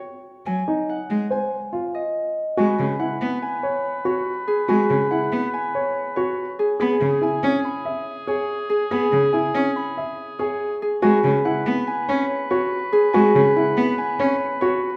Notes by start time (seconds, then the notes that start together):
Already playing: C#5 F#5 G5
0.46 F#3 G#5
0.68 D#4
0.89 F#5
1.10 G#3
1.30 C5 G#5
1.73 F4
1.95 D#5
2.57 G#3 F#4 B4 G#5
2.79 C#3
3.00 E4 F#5
3.21 B3
3.42 G#5
3.63 C#5
4.05 F#4 C#5
4.48 G#4
4.68 G#3 F#4 G#5
4.90 C#3
5.11 E4 F#5
5.32 B3
5.54 G#5
5.75 C#5
6.16 F#4 C#5
6.59 G#4
6.80 B3 G#4 B5
7.01 C#3
7.21 E4 G#5
7.43 C#4
7.65 B5
7.85 E5
8.27 G#4 C#5
8.70 G#4
8.91 B3 G#4 B5
9.12 C#3
9.33 E4 G#5
9.55 C#4
9.76 B5
9.97 E5
10.39 G#4 C#5
10.82 G#4
11.02 G#3 F#4 B4 G#5
11.24 C#3
11.45 E4 F#5
11.66 B3
11.87 G#5
12.09 C#4 C#5
12.51 F#4 C#5
12.93 G#4
13.13 G#3 F#4 G#5
13.35 C#3
13.56 E4 F#5
13.77 B3
13.98 G#5
14.19 C#4 C#5
14.61 F#4 C#5